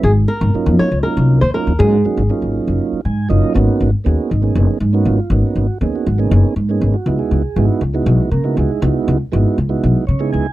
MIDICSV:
0, 0, Header, 1, 5, 480
1, 0, Start_track
1, 0, Tempo, 502092
1, 40, Time_signature, 7, 3, 24, 8
1, 10065, End_track
2, 0, Start_track
2, 0, Title_t, "Nylon-string guitar"
2, 0, Program_c, 0, 24
2, 39, Note_on_c, 0, 68, 83
2, 104, Note_off_c, 0, 68, 0
2, 269, Note_on_c, 0, 70, 89
2, 721, Note_off_c, 0, 70, 0
2, 758, Note_on_c, 0, 73, 87
2, 981, Note_off_c, 0, 73, 0
2, 985, Note_on_c, 0, 70, 78
2, 1327, Note_off_c, 0, 70, 0
2, 1350, Note_on_c, 0, 72, 81
2, 1470, Note_off_c, 0, 72, 0
2, 1473, Note_on_c, 0, 70, 79
2, 1710, Note_on_c, 0, 68, 79
2, 1724, Note_off_c, 0, 70, 0
2, 3115, Note_off_c, 0, 68, 0
2, 10065, End_track
3, 0, Start_track
3, 0, Title_t, "Tonewheel organ"
3, 0, Program_c, 1, 16
3, 520, Note_on_c, 1, 54, 67
3, 520, Note_on_c, 1, 58, 62
3, 528, Note_on_c, 1, 61, 64
3, 528, Note_on_c, 1, 63, 64
3, 531, Note_on_c, 1, 65, 68
3, 858, Note_off_c, 1, 54, 0
3, 858, Note_off_c, 1, 58, 0
3, 862, Note_off_c, 1, 61, 0
3, 862, Note_off_c, 1, 63, 0
3, 864, Note_off_c, 1, 65, 0
3, 997, Note_on_c, 1, 54, 70
3, 1003, Note_on_c, 1, 58, 58
3, 1008, Note_on_c, 1, 63, 67
3, 1009, Note_on_c, 1, 61, 69
3, 1015, Note_on_c, 1, 65, 80
3, 1336, Note_off_c, 1, 54, 0
3, 1339, Note_off_c, 1, 58, 0
3, 1342, Note_off_c, 1, 61, 0
3, 1342, Note_off_c, 1, 63, 0
3, 1345, Note_off_c, 1, 65, 0
3, 1480, Note_on_c, 1, 54, 69
3, 1484, Note_on_c, 1, 58, 67
3, 1491, Note_on_c, 1, 61, 68
3, 1491, Note_on_c, 1, 65, 76
3, 1493, Note_on_c, 1, 63, 68
3, 1649, Note_off_c, 1, 54, 0
3, 1651, Note_off_c, 1, 58, 0
3, 1654, Note_off_c, 1, 61, 0
3, 1654, Note_off_c, 1, 65, 0
3, 1655, Note_off_c, 1, 63, 0
3, 1711, Note_on_c, 1, 54, 71
3, 1714, Note_on_c, 1, 58, 74
3, 1717, Note_on_c, 1, 61, 73
3, 1720, Note_on_c, 1, 63, 71
3, 1727, Note_on_c, 1, 66, 89
3, 1884, Note_off_c, 1, 54, 0
3, 1886, Note_off_c, 1, 58, 0
3, 1887, Note_off_c, 1, 61, 0
3, 1889, Note_off_c, 1, 63, 0
3, 1892, Note_off_c, 1, 66, 0
3, 1956, Note_on_c, 1, 54, 77
3, 1963, Note_on_c, 1, 58, 72
3, 1964, Note_on_c, 1, 61, 72
3, 1968, Note_on_c, 1, 63, 72
3, 1970, Note_on_c, 1, 66, 83
3, 2127, Note_off_c, 1, 54, 0
3, 2130, Note_off_c, 1, 58, 0
3, 2131, Note_off_c, 1, 61, 0
3, 2133, Note_off_c, 1, 63, 0
3, 2133, Note_off_c, 1, 66, 0
3, 2195, Note_on_c, 1, 54, 80
3, 2198, Note_on_c, 1, 58, 69
3, 2201, Note_on_c, 1, 61, 75
3, 2205, Note_on_c, 1, 63, 68
3, 2209, Note_on_c, 1, 65, 75
3, 2872, Note_off_c, 1, 54, 0
3, 2874, Note_off_c, 1, 58, 0
3, 2875, Note_off_c, 1, 61, 0
3, 2877, Note_off_c, 1, 63, 0
3, 2879, Note_off_c, 1, 65, 0
3, 2917, Note_on_c, 1, 80, 65
3, 3141, Note_off_c, 1, 80, 0
3, 3143, Note_on_c, 1, 54, 89
3, 3149, Note_on_c, 1, 58, 81
3, 3150, Note_on_c, 1, 75, 63
3, 3152, Note_on_c, 1, 61, 78
3, 3155, Note_on_c, 1, 63, 85
3, 3156, Note_on_c, 1, 65, 93
3, 3377, Note_off_c, 1, 58, 0
3, 3377, Note_off_c, 1, 75, 0
3, 3383, Note_off_c, 1, 61, 0
3, 3384, Note_off_c, 1, 63, 0
3, 3388, Note_on_c, 1, 58, 87
3, 3390, Note_off_c, 1, 54, 0
3, 3390, Note_on_c, 1, 59, 79
3, 3394, Note_on_c, 1, 61, 85
3, 3395, Note_on_c, 1, 63, 77
3, 3397, Note_off_c, 1, 65, 0
3, 3401, Note_on_c, 1, 66, 104
3, 3731, Note_off_c, 1, 58, 0
3, 3732, Note_off_c, 1, 59, 0
3, 3734, Note_off_c, 1, 61, 0
3, 3734, Note_off_c, 1, 63, 0
3, 3737, Note_off_c, 1, 66, 0
3, 3863, Note_on_c, 1, 58, 70
3, 3870, Note_on_c, 1, 59, 62
3, 3871, Note_on_c, 1, 61, 67
3, 3878, Note_on_c, 1, 63, 58
3, 3881, Note_on_c, 1, 68, 74
3, 3884, Note_on_c, 1, 66, 72
3, 4098, Note_off_c, 1, 63, 0
3, 4110, Note_on_c, 1, 63, 70
3, 4113, Note_off_c, 1, 66, 0
3, 4123, Note_off_c, 1, 58, 0
3, 4127, Note_off_c, 1, 59, 0
3, 4128, Note_off_c, 1, 61, 0
3, 4133, Note_off_c, 1, 68, 0
3, 4222, Note_on_c, 1, 58, 61
3, 4223, Note_off_c, 1, 63, 0
3, 4229, Note_on_c, 1, 59, 52
3, 4231, Note_on_c, 1, 61, 57
3, 4235, Note_on_c, 1, 63, 56
3, 4239, Note_on_c, 1, 68, 69
3, 4567, Note_off_c, 1, 58, 0
3, 4571, Note_off_c, 1, 59, 0
3, 4571, Note_off_c, 1, 61, 0
3, 4574, Note_off_c, 1, 63, 0
3, 4576, Note_off_c, 1, 68, 0
3, 4713, Note_on_c, 1, 58, 70
3, 4718, Note_on_c, 1, 59, 65
3, 4720, Note_on_c, 1, 61, 60
3, 4723, Note_on_c, 1, 63, 66
3, 4729, Note_on_c, 1, 66, 75
3, 4841, Note_on_c, 1, 65, 81
3, 4968, Note_off_c, 1, 58, 0
3, 4971, Note_off_c, 1, 59, 0
3, 4972, Note_off_c, 1, 61, 0
3, 4973, Note_off_c, 1, 63, 0
3, 4976, Note_off_c, 1, 66, 0
3, 5072, Note_off_c, 1, 65, 0
3, 5082, Note_on_c, 1, 58, 75
3, 5083, Note_on_c, 1, 59, 66
3, 5087, Note_on_c, 1, 61, 69
3, 5087, Note_on_c, 1, 66, 74
3, 5092, Note_on_c, 1, 63, 67
3, 5417, Note_off_c, 1, 58, 0
3, 5417, Note_off_c, 1, 59, 0
3, 5419, Note_off_c, 1, 61, 0
3, 5422, Note_off_c, 1, 63, 0
3, 5528, Note_off_c, 1, 66, 0
3, 5553, Note_on_c, 1, 58, 75
3, 5560, Note_on_c, 1, 61, 63
3, 5562, Note_on_c, 1, 59, 65
3, 5565, Note_on_c, 1, 63, 73
3, 5567, Note_on_c, 1, 68, 87
3, 5694, Note_on_c, 1, 66, 66
3, 5808, Note_off_c, 1, 58, 0
3, 5812, Note_off_c, 1, 59, 0
3, 5812, Note_off_c, 1, 61, 0
3, 5814, Note_off_c, 1, 63, 0
3, 5815, Note_off_c, 1, 68, 0
3, 5911, Note_on_c, 1, 58, 63
3, 5913, Note_on_c, 1, 59, 62
3, 5918, Note_off_c, 1, 66, 0
3, 5920, Note_on_c, 1, 61, 52
3, 5923, Note_on_c, 1, 63, 54
3, 5927, Note_on_c, 1, 68, 72
3, 6251, Note_off_c, 1, 58, 0
3, 6252, Note_off_c, 1, 59, 0
3, 6256, Note_off_c, 1, 61, 0
3, 6257, Note_off_c, 1, 63, 0
3, 6259, Note_off_c, 1, 68, 0
3, 6394, Note_on_c, 1, 58, 64
3, 6401, Note_on_c, 1, 59, 65
3, 6405, Note_on_c, 1, 61, 61
3, 6410, Note_on_c, 1, 63, 65
3, 6414, Note_on_c, 1, 68, 80
3, 6633, Note_on_c, 1, 66, 73
3, 6648, Note_off_c, 1, 58, 0
3, 6652, Note_off_c, 1, 59, 0
3, 6654, Note_off_c, 1, 61, 0
3, 6656, Note_off_c, 1, 63, 0
3, 6659, Note_off_c, 1, 68, 0
3, 6755, Note_on_c, 1, 56, 86
3, 6758, Note_on_c, 1, 59, 72
3, 6760, Note_off_c, 1, 66, 0
3, 6763, Note_on_c, 1, 63, 70
3, 6763, Note_on_c, 1, 64, 72
3, 6772, Note_on_c, 1, 66, 92
3, 6874, Note_on_c, 1, 68, 71
3, 7093, Note_off_c, 1, 56, 0
3, 7095, Note_off_c, 1, 59, 0
3, 7097, Note_off_c, 1, 63, 0
3, 7097, Note_off_c, 1, 64, 0
3, 7101, Note_off_c, 1, 66, 0
3, 7234, Note_on_c, 1, 56, 70
3, 7235, Note_on_c, 1, 59, 68
3, 7242, Note_on_c, 1, 64, 66
3, 7243, Note_on_c, 1, 63, 71
3, 7244, Note_on_c, 1, 66, 84
3, 7321, Note_off_c, 1, 68, 0
3, 7488, Note_off_c, 1, 56, 0
3, 7489, Note_off_c, 1, 59, 0
3, 7492, Note_off_c, 1, 64, 0
3, 7493, Note_off_c, 1, 63, 0
3, 7493, Note_off_c, 1, 66, 0
3, 7587, Note_on_c, 1, 56, 76
3, 7594, Note_on_c, 1, 59, 64
3, 7597, Note_on_c, 1, 63, 63
3, 7600, Note_on_c, 1, 64, 67
3, 7606, Note_on_c, 1, 66, 92
3, 7929, Note_off_c, 1, 56, 0
3, 7933, Note_off_c, 1, 59, 0
3, 7934, Note_off_c, 1, 63, 0
3, 7936, Note_off_c, 1, 64, 0
3, 7939, Note_off_c, 1, 66, 0
3, 7948, Note_on_c, 1, 70, 86
3, 7955, Note_on_c, 1, 58, 65
3, 8068, Note_on_c, 1, 59, 66
3, 8069, Note_on_c, 1, 56, 74
3, 8071, Note_on_c, 1, 63, 71
3, 8078, Note_on_c, 1, 64, 64
3, 8081, Note_on_c, 1, 66, 78
3, 8184, Note_off_c, 1, 70, 0
3, 8188, Note_off_c, 1, 58, 0
3, 8201, Note_off_c, 1, 63, 0
3, 8202, Note_off_c, 1, 56, 0
3, 8202, Note_off_c, 1, 64, 0
3, 8204, Note_on_c, 1, 68, 82
3, 8213, Note_on_c, 1, 56, 59
3, 8213, Note_on_c, 1, 63, 66
3, 8214, Note_on_c, 1, 64, 70
3, 8325, Note_off_c, 1, 59, 0
3, 8332, Note_off_c, 1, 66, 0
3, 8418, Note_off_c, 1, 56, 0
3, 8421, Note_off_c, 1, 63, 0
3, 8425, Note_off_c, 1, 64, 0
3, 8429, Note_on_c, 1, 56, 77
3, 8432, Note_on_c, 1, 63, 67
3, 8433, Note_off_c, 1, 68, 0
3, 8435, Note_on_c, 1, 59, 71
3, 8436, Note_on_c, 1, 64, 71
3, 8443, Note_on_c, 1, 66, 88
3, 8771, Note_off_c, 1, 56, 0
3, 8772, Note_off_c, 1, 63, 0
3, 8773, Note_off_c, 1, 59, 0
3, 8774, Note_off_c, 1, 64, 0
3, 8777, Note_off_c, 1, 66, 0
3, 8908, Note_on_c, 1, 56, 91
3, 8913, Note_on_c, 1, 59, 80
3, 8915, Note_on_c, 1, 63, 75
3, 8920, Note_on_c, 1, 64, 79
3, 8925, Note_on_c, 1, 66, 86
3, 9165, Note_off_c, 1, 56, 0
3, 9168, Note_off_c, 1, 59, 0
3, 9169, Note_off_c, 1, 63, 0
3, 9172, Note_off_c, 1, 64, 0
3, 9174, Note_off_c, 1, 66, 0
3, 9264, Note_on_c, 1, 56, 78
3, 9266, Note_on_c, 1, 59, 68
3, 9268, Note_on_c, 1, 63, 74
3, 9272, Note_on_c, 1, 66, 85
3, 9274, Note_on_c, 1, 64, 64
3, 9608, Note_off_c, 1, 56, 0
3, 9609, Note_off_c, 1, 59, 0
3, 9610, Note_off_c, 1, 63, 0
3, 9612, Note_off_c, 1, 66, 0
3, 9613, Note_off_c, 1, 64, 0
3, 9627, Note_on_c, 1, 73, 70
3, 9744, Note_on_c, 1, 56, 84
3, 9749, Note_on_c, 1, 59, 79
3, 9751, Note_on_c, 1, 63, 75
3, 9755, Note_on_c, 1, 68, 93
3, 9758, Note_on_c, 1, 64, 77
3, 9855, Note_off_c, 1, 73, 0
3, 9873, Note_on_c, 1, 80, 65
3, 10004, Note_off_c, 1, 56, 0
3, 10006, Note_off_c, 1, 59, 0
3, 10007, Note_off_c, 1, 63, 0
3, 10009, Note_off_c, 1, 68, 0
3, 10011, Note_off_c, 1, 64, 0
3, 10065, Note_off_c, 1, 80, 0
3, 10065, End_track
4, 0, Start_track
4, 0, Title_t, "Upright bass"
4, 0, Program_c, 2, 32
4, 33, Note_on_c, 2, 32, 98
4, 229, Note_off_c, 2, 32, 0
4, 393, Note_on_c, 2, 32, 95
4, 493, Note_off_c, 2, 32, 0
4, 633, Note_on_c, 2, 41, 95
4, 733, Note_off_c, 2, 41, 0
4, 875, Note_on_c, 2, 37, 83
4, 973, Note_off_c, 2, 37, 0
4, 1117, Note_on_c, 2, 36, 91
4, 1311, Note_off_c, 2, 36, 0
4, 1353, Note_on_c, 2, 39, 84
4, 1452, Note_off_c, 2, 39, 0
4, 1595, Note_on_c, 2, 39, 75
4, 1693, Note_off_c, 2, 39, 0
4, 1718, Note_on_c, 2, 44, 113
4, 1912, Note_off_c, 2, 44, 0
4, 2077, Note_on_c, 2, 32, 90
4, 2174, Note_off_c, 2, 32, 0
4, 2313, Note_on_c, 2, 32, 69
4, 2508, Note_off_c, 2, 32, 0
4, 2556, Note_on_c, 2, 30, 76
4, 2654, Note_off_c, 2, 30, 0
4, 2914, Note_on_c, 2, 44, 77
4, 3109, Note_off_c, 2, 44, 0
4, 3154, Note_on_c, 2, 30, 79
4, 3252, Note_off_c, 2, 30, 0
4, 3397, Note_on_c, 2, 32, 96
4, 3494, Note_off_c, 2, 32, 0
4, 3637, Note_on_c, 2, 32, 88
4, 3734, Note_off_c, 2, 32, 0
4, 3880, Note_on_c, 2, 39, 81
4, 3975, Note_off_c, 2, 39, 0
4, 4122, Note_on_c, 2, 32, 77
4, 4313, Note_off_c, 2, 32, 0
4, 4353, Note_on_c, 2, 30, 92
4, 4451, Note_off_c, 2, 30, 0
4, 4592, Note_on_c, 2, 44, 88
4, 4787, Note_off_c, 2, 44, 0
4, 4832, Note_on_c, 2, 32, 87
4, 4930, Note_off_c, 2, 32, 0
4, 5066, Note_on_c, 2, 32, 100
4, 5167, Note_off_c, 2, 32, 0
4, 5310, Note_on_c, 2, 32, 82
4, 5409, Note_off_c, 2, 32, 0
4, 5554, Note_on_c, 2, 39, 84
4, 5651, Note_off_c, 2, 39, 0
4, 5798, Note_on_c, 2, 32, 86
4, 5990, Note_off_c, 2, 32, 0
4, 6035, Note_on_c, 2, 30, 99
4, 6132, Note_off_c, 2, 30, 0
4, 6271, Note_on_c, 2, 44, 88
4, 6466, Note_off_c, 2, 44, 0
4, 6514, Note_on_c, 2, 32, 88
4, 6611, Note_off_c, 2, 32, 0
4, 6748, Note_on_c, 2, 37, 90
4, 6848, Note_off_c, 2, 37, 0
4, 6990, Note_on_c, 2, 37, 84
4, 7089, Note_off_c, 2, 37, 0
4, 7229, Note_on_c, 2, 32, 89
4, 7328, Note_off_c, 2, 32, 0
4, 7465, Note_on_c, 2, 37, 83
4, 7662, Note_off_c, 2, 37, 0
4, 7707, Note_on_c, 2, 35, 103
4, 7807, Note_off_c, 2, 35, 0
4, 7948, Note_on_c, 2, 49, 92
4, 8144, Note_off_c, 2, 49, 0
4, 8192, Note_on_c, 2, 37, 81
4, 8290, Note_off_c, 2, 37, 0
4, 8433, Note_on_c, 2, 37, 103
4, 8530, Note_off_c, 2, 37, 0
4, 8678, Note_on_c, 2, 37, 92
4, 8773, Note_off_c, 2, 37, 0
4, 8921, Note_on_c, 2, 32, 90
4, 9016, Note_off_c, 2, 32, 0
4, 9157, Note_on_c, 2, 37, 78
4, 9349, Note_off_c, 2, 37, 0
4, 9402, Note_on_c, 2, 35, 88
4, 9496, Note_off_c, 2, 35, 0
4, 9640, Note_on_c, 2, 49, 81
4, 9832, Note_off_c, 2, 49, 0
4, 9880, Note_on_c, 2, 37, 76
4, 9975, Note_off_c, 2, 37, 0
4, 10065, End_track
5, 0, Start_track
5, 0, Title_t, "Muted upright bass strokes"
5, 518, Note_on_c, 9, 29, 38
5, 614, Note_off_c, 9, 29, 0
5, 755, Note_on_c, 9, 29, 35
5, 851, Note_off_c, 9, 29, 0
5, 1958, Note_on_c, 9, 29, 37
5, 2054, Note_off_c, 9, 29, 0
5, 2795, Note_on_c, 9, 29, 32
5, 2891, Note_off_c, 9, 29, 0
5, 10065, End_track
0, 0, End_of_file